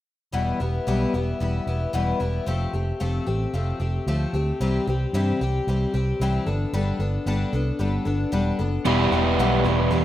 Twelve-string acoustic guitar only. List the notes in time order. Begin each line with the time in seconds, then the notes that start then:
0.32 E2 B2 E3 G3 B3 E4
0.60 E3 G3 B3 E4
0.87 E2 B2 E3 G3 B3 E4
1.14 E3 G3 B3 E4
1.40 E3 G3 B3 E4
1.67 E3 G3 B3 E4
1.93 E2 B2 E3 G3 B3 E4
2.20 E3 G3 B3 E4
2.46 F3 A3 C4 G4
2.73 A3 C4 G4
3.00 F3 A3 C4 G4
3.27 A3 C4 G4
3.54 F3 A3 C4 G4
3.80 A3 C4 G4
4.08 F3 A3 C4 G4
4.34 A3 C4 G4
4.61 C3 E3 G3 C4 G4
4.87 G3 C4 G4
5.14 C3 E3 G3 C4 G4
5.41 G3 C4 G4
5.68 E3 G3 C4 G4
5.94 G3 C4 G4
6.21 C3 E3 G3 C4 G4
6.46 B3 D4 A4
6.73 G3 B3 D4 A4
7.00 B3 D4 A4
7.27 G3 B3 D4 A4
7.53 B3 D4 A4
7.79 G3 B3 D4 A4
8.05 B3 D4 A4
8.32 G3 B3 D4 A4
8.59 B3 D4 A4
8.85 E2 B2 E3 G3 B3 G4
9.12 E3 G3 B3 G4
9.39 E2 B2 E3 G3 B3 G4
9.65 E3 G3 B3 G4
9.91 E3 G3 B3 G4